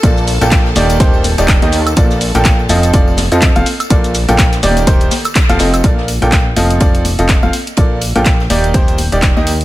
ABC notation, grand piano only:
X:1
M:4/4
L:1/16
Q:"Swing 16ths" 1/4=124
K:Bb
V:1 name="Grand piano"
[B,,B,FAd]2 z [B,,B,FAg]2 z [E,B,EGd]2 [E,B,EGc]2 z [E,B,EGd]2 [E,B,EGe] z2 | [B,,B,FAd]2 z [B,,B,FAg]2 z [F,CFAe]2 [F,CFAd]2 z [F,CFAe]2 [CFAf] z2 | [B,,B,FAd]2 z [B,,B,FAg]2 z [E,B,EGd]2 [E,B,EGc]2 z3 [F,CFAf] [CFAe]2 | [B,,B,FAd]2 z [B,,B,FAg]2 z [F,CFAe]2 [F,CFAd]2 z [F,CFAe]2 [CFAf] z2 |
[B,,B,FAd]2 z [B,,B,FAg]2 z [E,B,EGd]2 [E,B,EGc]2 z [E,B,EGd]2 [E,B,EGe] z2 |]